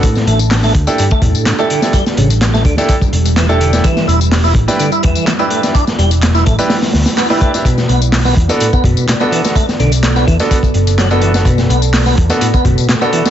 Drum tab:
HH |x-x-o-x-x-x-x-x-|x-xxx-x-x-xxx-x-|x-x-o-x-x-x-x-x-|x-xxx-x-ooooo-x-|
TB |xx-xxx-xxx-xxx-x|xx-xxx-xxx-xxx-x|xx-xxx-xxx-xxx-x|xx-xxx-xxx-xxx-x|
CP |----x-------x---|----x-------x---|----x-------x---|----x-------x---|
SD |-o--oo-o----o--o|-o--oo-o----o--o|-o--oo-o----o--o|-o--oo-ooooooo-o|
BD |o-----o--oo-----|o-----o-oo------|o-----o---o-----|o-----o-------o-|

HH |x-x-o-x-x-x-x-x-|x-xxx-x-x-xxx-x-|x-x-o-x-x-x-x-x-|
TB |xx-xxx-xxx-xxx-x|xx-xxx-xxx-xxx-x|xx-xxx-xxx-xxx-x|
CP |----x-------x---|----x-------x---|----x-------x---|
SD |-o--oo-o----o--o|-o--oo-o----o--o|-o--oo-o----o--o|
BD |o-----o--oo-----|o-----o-oo------|o-----o--oo-----|